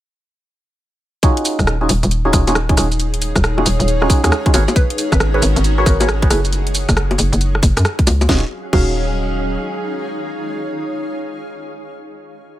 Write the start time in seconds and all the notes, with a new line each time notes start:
1.23 C#4 D#4 F4 F#4 G#4, kick, closed hi-hat, shaker
1.35 G#4, closed hi-hat
1.45 open hi-hat, shaker
1.59 D#1 C#5, kick, cross-stick, shaker
1.67 cross-stick, shaker
1.81 C#4 D#4 F4 F#4 G#4
1.89 D#1, open hi-hat, shaker
2.03 D#1, closed hi-hat, shaker
2.11 closed hi-hat, shaker
2.25 C#4 D#4 F4 F#4 G#4
2.33 D#1 D#4 F4 G#4, kick, cross-stick, open hi-hat, shaker
2.47 C#4 D#4 F4 F#4 G#4 F5, closed hi-hat, high bongo, shaker
2.55 cross-stick, shaker
2.69 C#4 D#4 F4 F#4 G#4, kick, closed hi-hat
2.77 D#1 C#4 D#4 F4 F#4 G#4, cross-stick, open hi-hat, shaker
2.92 closed hi-hat, shaker
3.00 closed hi-hat, shaker
3.14 closed hi-hat
3.22 open hi-hat, shaker
3.36 D#1, kick, cross-stick, shaker
3.44 cross-stick, shaker
3.57 C#4 D#4 F4 F#4 G#4, high bongo
3.66 D#1, open hi-hat, shaker
3.80 D#1, closed hi-hat, shaker
3.88 closed hi-hat, shaker
4.02 C#4 D#4 F4 F#4 G#4, cross-stick
4.10 C#4 D#4 F4 F#4 G#4, kick, open hi-hat, shaker
4.24 D#2 C#4 D#4 F4 F#4 G#4, cross-stick, closed hi-hat, shaker
4.32 cross-stick, shaker
4.46 C#4 D#4 F4 F#4 G#4, kick, closed hi-hat
4.54 G#1 F#4 G#4 A#4 B4 C#5, open hi-hat, high bongo, shaker
4.68 closed hi-hat, high bongo, shaker
4.76 B3 C#4 F#4 A#4 B4, kick, closed hi-hat, shaker
4.87 F#5, closed hi-hat
4.98 open hi-hat, shaker
5.12 G#1 B4, kick, cross-stick, shaker
5.20 cross-stick, shaker
5.34 F#4 G#4 A#4 B4 C#5
5.42 G#1, open hi-hat, shaker
5.56 G#1, closed hi-hat, shaker
5.64 closed hi-hat, shaker
5.78 F#4 G#4 A#4 B4 C#5
5.86 G#1 F#4 G#4 A#4 B4 C#5, kick, cross-stick, open hi-hat, shaker
6.00 F#4 G#4 A#4 B4 C#5, closed hi-hat, high bongo, shaker
6.09 cross-stick, shaker
6.22 F#4 G#4 A#4 B4 C#5, kick, closed hi-hat
6.30 F#1 A3 E4 F#4 G#4 A4 B4, cross-stick, open hi-hat, shaker
6.45 closed hi-hat, shaker
6.53 closed hi-hat, shaker
6.67 closed hi-hat
6.75 open hi-hat, shaker
6.89 F#1, kick, cross-stick, shaker
6.97 cross-stick, shaker
7.11 closed hi-hat, high bongo
7.18 F#1, open hi-hat, shaker
7.33 F#1, closed hi-hat, shaker
7.41 closed hi-hat, shaker
7.55 cross-stick
7.63 F#1, kick, open hi-hat, shaker
7.77 F#2, cross-stick, closed hi-hat, shaker
7.85 cross-stick, shaker
7.99 kick, closed hi-hat
8.07 C#2, open hi-hat, high bongo, shaker
8.21 closed hi-hat, high bongo, shaker
8.28 D#1 F#3 C#4 D#4 F4 F#4 G#4 F5, kick, snare
8.37 G#4
8.44 C#5
8.49 F5
8.73 D#1 C#4 D#4 F#4 G#4 F5, kick, crash